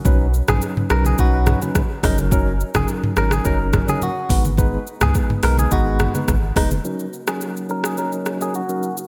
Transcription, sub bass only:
\new Staff \with { instrumentName = "Sub bass" } { \clef bass \time 4/4 \key fis \major \tempo 4 = 106 b,,8. ais,,16 r8 b,,8 b,,8. r8. fis,,8~ | fis,,8. fis,,16 r8 gis,,8 fis,,8. r8. gis,,8~ | gis,,8 r16 cis,16 r8 b,,8 gis,,8. r16 gis,,8 eis,,8 | r1 | }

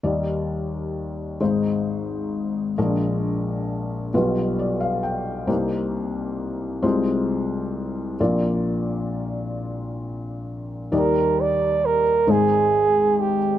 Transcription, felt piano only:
<<
  \new Staff \with { instrumentName = "Felt piano" } { \time 6/8 \key ees \major \tempo 4. = 44 << { r2. | r2 d''16 f''16 g''8 | r2. | r2. |
r2. | } \\ { <g ees' d''>4. <aes ees' c''>4. | <aes d' bes'>4. <g f' b'>4. | <bes ees' c''>4. <aes f' c''>4. | <bes f' d''>2. |
<g ees' d''>4 r8 <aes ees' c''>4 r8 | } >> }
  \new Staff \with { instrumentName = "Felt piano" } { \clef bass \time 6/8 \key ees \major <ees, ees>4. <aes,, aes,>4. | <bes,, bes,>4. <b,, b,>4. | <c, c>4. <c, c>4. | <bes,, bes,>2. |
<ees, ees>4. <aes,, aes,>4. | }
>>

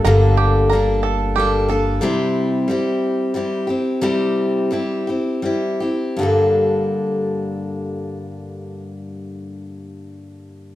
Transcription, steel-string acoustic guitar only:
\new Staff \with { instrumentName = "Steel-string acoustic guitar" } { \time 3/4 \key g \dorian \tempo 4 = 83 <g, d g bes d' a'>4 <g bes d' a'>4 <g bes d' a'>8 <g bes d' a'>8 | <c g c' e' g'>4 <g c' e' g'>4 <g c' e' g'>8 <c' e' g'>8 | <c g c' e' g'>4 <g c' e' g'>8 <c' e' g'>8 <g c' e' g'>8 <c' e' g'>8 | <g, d g bes d' a'>2.~ |
<g, d g bes d' a'>2. | }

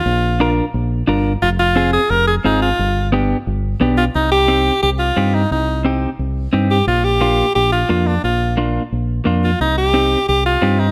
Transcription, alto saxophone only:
\new Staff \with { instrumentName = "Alto saxophone" } { \time 4/4 \key g \phrygian \tempo 4 = 176 f'4. r2 r8 | f'8 f'4 aes'8 bes'8 aes'8 ees'8 f'8~ | f'4 r2 r8 f'8 | \key c \minor ees'8 g'4. g'8 f'4 ees'8 |
ees'4 r2 r8 g'8 | f'8 g'4. g'8 f'4 d'8 | f'4 r2 r8 f'8 | ees'8 g'4. g'8 f'4 ees'8 | }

